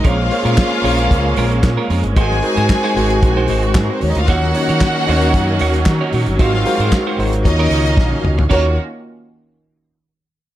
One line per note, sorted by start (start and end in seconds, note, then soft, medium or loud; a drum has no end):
0.00 4.24 G#3 medium
0.00 2.14 C#4 loud
0.04 0.27 A#1 loud
0.04 0.24 G#3 medium
0.04 2.14 A#3 medium
0.04 0.25 A#3 medium
0.04 0.18 C#4 loud
0.04 0.25 F4 medium
0.04 0.17 F4 medium
0.04 1.87 F4 loud
0.04 0.25 G#4 medium
0.04 0.17 A#4 medium
0.04 0.26 C5 medium
0.04 0.26 C#5 loud
0.04 1.86 F5 loud
0.04 kick loud
0.04 closed hi-hat medium
0.18 muted clean electric guitar stroke soft
0.30 0.72 A#3 medium
0.30 0.72 F4 medium
0.30 0.72 G#4 medium
0.30 0.72 C5 medium
0.30 0.73 C#5 loud
0.30 muted clean electric guitar stroke soft
0.30 open hi-hat medium
0.45 0.56 A#2 medium
0.45 0.56 G#3 medium
0.45 0.57 C#4 medium
0.45 0.57 F4 medium
0.45 0.57 A#4 medium
0.45 closed hi-hat soft
0.57 muted clean electric guitar stroke soft
0.57 kick loud
0.57 snare loud
0.57 clap medium
0.57 closed hi-hat medium
0.72 muted clean electric guitar stroke medium
0.84 1.06 A#1 medium
0.84 0.98 G#3 medium
0.84 1.64 A#3 medium
0.84 0.98 C#4 medium
0.84 1.64 F4 medium
0.84 0.98 F4 medium
0.84 1.65 G#4 medium
0.84 0.97 A#4 medium
0.84 1.65 C5 medium
0.84 1.65 C#5 medium
0.84 open hi-hat medium
0.99 1.10 G#3 medium
0.99 1.10 C#4 medium
0.99 1.10 F4 medium
0.99 1.10 A#4 medium
0.99 closed hi-hat medium
1.11 1.33 C#2 loud
1.11 muted clean electric guitar stroke soft
1.11 kick loud
1.11 closed hi-hat medium
1.25 muted clean electric guitar stroke soft
1.36 1.59 A#1 loud
1.36 1.57 G#3 medium
1.36 1.51 C#4 medium
1.36 1.51 F4 loud
1.36 1.50 A#4 loud
1.36 open hi-hat medium
1.52 muted clean electric guitar stroke soft
1.52 closed hi-hat soft
1.63 1.75 A#2 loud
1.63 muted clean electric guitar stroke medium
1.63 kick loud
1.63 snare loud
1.63 clap loud
1.63 closed hi-hat medium
1.77 1.89 G#3 medium
1.77 1.89 C#4 medium
1.77 1.90 F4 medium
1.77 1.90 A#4 medium
1.90 2.02 F2 medium
1.90 2.05 G#3 medium
1.90 2.04 C#4 medium
1.90 2.03 F4 medium
1.90 2.03 A#4 medium
1.90 open hi-hat medium
2.04 2.17 G1 medium
2.04 muted clean electric guitar stroke medium
2.04 closed hi-hat medium
2.15 2.39 G#1 loud
2.15 2.36 G#3 medium
2.15 2.41 G#3 medium
2.15 4.26 C4 medium
2.15 2.37 D#4 medium
2.15 2.41 D#4 loud
2.15 2.37 F#4 medium
2.15 4.26 F#4 loud
2.15 2.41 F#4 loud
2.15 3.59 G#4 loud
2.15 2.37 A#4 medium
2.15 2.37 C5 medium
2.15 2.42 C5 loud
2.15 3.59 G#5 loud
2.15 kick loud
2.15 closed hi-hat medium
2.31 snare soft
2.42 2.83 G#3 loud
2.42 2.84 D#4 medium
2.42 2.84 F#4 medium
2.42 2.84 A#4 loud
2.42 2.84 C5 loud
2.42 open hi-hat medium
2.57 2.68 G#2 loud
2.57 2.68 G#3 medium
2.57 2.69 D#4 medium
2.57 2.69 F#4 medium
2.57 2.69 C5 medium
2.57 closed hi-hat soft
2.69 kick loud
2.69 snare loud
2.69 clap loud
2.69 closed hi-hat medium
2.84 2.96 G#3 medium
2.84 2.95 D#4 medium
2.84 2.96 F#4 loud
2.84 2.96 C5 medium
2.95 3.18 G#1 medium
2.95 3.26 G#3 medium
2.95 3.12 G#3 medium
2.95 3.26 D#4 medium
2.95 3.26 F#4 medium
2.95 3.09 F#4 medium
2.95 3.26 A#4 medium
2.95 3.26 C5 loud
2.95 3.09 C5 medium
2.95 open hi-hat medium
3.10 muted clean electric guitar stroke soft
3.10 closed hi-hat medium
3.23 3.45 A#1 loud
3.23 muted clean electric guitar stroke soft
3.23 kick loud
3.23 closed hi-hat medium
3.35 4.05 G#3 medium
3.35 3.49 G#3 medium
3.35 4.06 D#4 medium
3.35 3.49 D#4 medium
3.35 4.06 F#4 medium
3.35 3.49 F#4 medium
3.35 4.06 A#4 medium
3.35 3.49 C5 medium
3.35 4.06 C5 medium
3.48 3.71 G#1 medium
3.48 3.65 G#3 medium
3.48 3.63 D#4 medium
3.48 3.63 F#4 medium
3.48 3.63 C5 medium
3.48 open hi-hat medium
3.63 3.75 F#4 medium
3.63 muted clean electric guitar stroke soft
3.63 closed hi-hat soft
3.74 3.87 G#2 loud
3.74 3.85 G#3 medium
3.74 3.85 G#4 medium
3.74 muted clean electric guitar stroke medium
3.74 kick loud
3.74 snare loud
3.74 clap loud
3.74 closed hi-hat medium
3.86 3.94 A#3 medium
3.86 3.94 A#4 medium
3.90 4.02 C4 medium
3.90 4.02 C5 medium
3.90 muted clean electric guitar stroke soft
4.01 4.14 D#2 medium
4.01 4.10 C#4 medium
4.01 4.10 C#5 medium
4.01 open hi-hat medium
4.10 4.19 D#4 medium
4.10 4.19 D#5 medium
4.15 4.28 D2 medium
4.15 muted clean electric guitar stroke soft
4.15 closed hi-hat medium
4.19 4.28 F4 loud
4.19 4.28 F5 loud
4.27 4.50 D#2 loud
4.27 4.48 D#3 medium
4.27 6.38 D#3 medium
4.27 8.47 F#3 loud
4.27 6.37 A#3 medium
4.27 4.48 A#3 medium
4.27 6.37 C#4 medium
4.27 4.48 D#4 medium
4.27 6.38 D#4 medium
4.27 4.42 D#4 medium
4.27 4.49 F4 medium
4.27 6.09 F#4 loud
4.27 4.49 F#4 medium
4.27 4.42 F#4 medium
4.27 4.49 C#5 loud
4.27 4.41 C#5 medium
4.27 6.09 F#5 loud
4.27 kick loud
4.27 closed hi-hat medium
4.43 muted clean electric guitar stroke soft
4.43 snare soft
4.54 4.95 D#3 loud
4.54 4.96 C#4 medium
4.54 4.95 D#4 loud
4.54 4.96 F#4 medium
4.54 4.96 C#5 loud
4.54 muted clean electric guitar stroke soft
4.54 open hi-hat medium
4.69 4.80 D#3 medium
4.69 4.80 A#3 medium
4.69 4.80 D#4 medium
4.69 4.81 F#4 medium
4.69 4.81 C#5 medium
4.69 closed hi-hat soft
4.80 muted clean electric guitar stroke medium
4.80 kick loud
4.80 snare loud
4.80 clap medium
4.80 closed hi-hat medium
4.96 muted clean electric guitar stroke medium
5.07 5.30 D#2 medium
5.07 5.87 D#3 medium
5.07 5.23 A#3 medium
5.07 5.87 C#4 medium
5.07 5.87 D#4 medium
5.07 5.22 D#4 medium
5.07 5.88 F#4 medium
5.07 5.22 F#4 medium
5.07 5.88 C#5 loud
5.07 5.22 C#5 medium
5.07 open hi-hat medium
5.21 5.34 A#3 medium
5.21 5.34 D#4 medium
5.21 5.35 F#4 medium
5.21 5.35 C#5 medium
5.21 closed hi-hat soft
5.34 5.56 F#2 loud
5.34 kick loud
5.34 closed hi-hat medium
5.49 muted clean electric guitar stroke medium
5.59 5.83 D#2 medium
5.59 5.80 A#3 loud
5.59 5.74 D#4 loud
5.59 5.74 F#4 loud
5.59 5.73 C#5 loud
5.59 open hi-hat medium
5.74 muted clean electric guitar stroke medium
5.74 closed hi-hat medium
5.85 5.98 D#3 loud
5.85 muted clean electric guitar stroke soft
5.85 kick loud
5.85 snare loud
5.85 clap loud
5.85 closed hi-hat medium
6.01 6.12 A#3 medium
6.01 6.13 D#4 medium
6.01 6.13 F#4 medium
6.01 6.13 C#5 medium
6.13 6.25 A#2 medium
6.13 6.29 A#3 medium
6.13 6.28 D#4 medium
6.13 6.27 F#4 medium
6.13 6.27 C#5 medium
6.13 open hi-hat medium
6.26 6.39 G1 medium
6.26 muted clean electric guitar stroke medium
6.26 closed hi-hat medium
6.39 6.62 G#1 loud
6.39 6.59 G#3 medium
6.39 7.44 G#3 medium
6.39 6.64 G#3 loud
6.39 7.44 C4 medium
6.39 6.60 D#4 medium
6.39 6.64 D#4 loud
6.39 7.17 F4 medium
6.39 6.60 F#4 medium
6.39 6.65 F#4 loud
6.39 6.60 A#4 medium
6.39 6.60 C5 medium
6.39 6.65 C5 loud
6.39 7.17 F5 loud
6.39 kick loud
6.39 closed hi-hat medium
6.54 snare soft
6.65 7.06 G#3 loud
6.65 7.07 D#4 medium
6.65 7.07 F#4 loud
6.65 7.07 A#4 medium
6.65 7.07 C5 loud
6.65 open hi-hat medium
6.79 6.90 G#2 medium
6.79 6.92 G#3 medium
6.79 6.92 D#4 medium
6.79 6.93 F#4 medium
6.79 6.93 C5 medium
6.79 closed hi-hat soft
6.92 muted clean electric guitar stroke soft
6.92 kick loud
6.92 snare loud
6.92 clap medium
6.92 closed hi-hat medium
7.07 7.18 G#3 medium
7.07 7.18 D#4 medium
7.07 7.18 F#4 medium
7.07 7.19 C5 loud
7.18 7.41 G#1 medium
7.18 7.45 G#3 medium
7.18 7.34 G#3 soft
7.18 7.44 D#4 medium
7.18 7.33 D#4 medium
7.18 7.44 F#4 medium
7.18 7.32 F#4 medium
7.18 7.46 A#4 medium
7.18 7.46 C5 medium
7.18 7.32 C5 medium
7.18 open hi-hat medium
7.33 muted clean electric guitar stroke soft
7.33 closed hi-hat medium
7.44 7.67 D#2 loud
7.44 8.49 D#3 medium
7.44 7.56 D#3 loud
7.44 8.49 A#3 medium
7.44 8.49 C#4 medium
7.44 8.23 D#4 loud
7.44 7.56 D#4 medium
7.44 7.57 F4 loud
7.44 7.57 F#4 medium
7.44 7.57 C#5 loud
7.44 8.23 D#5 loud
7.44 8.50 F5 medium
7.44 muted clean electric guitar stroke medium
7.44 kick loud
7.44 closed hi-hat medium
7.58 8.28 D#3 medium
7.58 7.71 C#4 medium
7.58 8.28 D#4 medium
7.58 8.28 F4 medium
7.58 8.29 F#4 medium
7.58 7.71 F#4 medium
7.58 7.71 A#4 loud
7.58 7.72 C#5 loud
7.58 8.29 C#5 medium
7.71 7.93 C#2 medium
7.71 7.87 C#4 medium
7.71 7.85 F#4 medium
7.71 7.85 A#4 medium
7.71 7.85 C#5 medium
7.71 open hi-hat medium
7.86 muted clean electric guitar stroke medium
7.86 closed hi-hat medium
7.97 8.10 A#1 loud
7.97 muted clean electric guitar stroke soft
7.97 kick loud
7.97 snare medium
8.12 muted clean electric guitar stroke soft
8.12 high tom medium
8.24 8.38 C#2 loud
8.24 mid tom loud
8.38 8.49 D2 medium
8.38 muted clean electric guitar stroke medium
8.38 floor tom loud
8.50 8.75 D#2 medium
8.50 8.75 D#3 medium
8.50 8.75 A#3 medium
8.50 8.76 A#3 medium
8.50 8.67 C#4 medium
8.50 8.75 C#4 medium
8.50 8.75 D#4 medium
8.50 8.75 F4 medium
8.50 8.67 F#4 medium
8.50 8.75 F#4 medium
8.50 8.67 A#4 medium
8.50 8.75 C#5 medium
8.50 8.67 C#5 loud
8.50 8.76 C#5 medium
8.50 kick loud
8.50 crash medium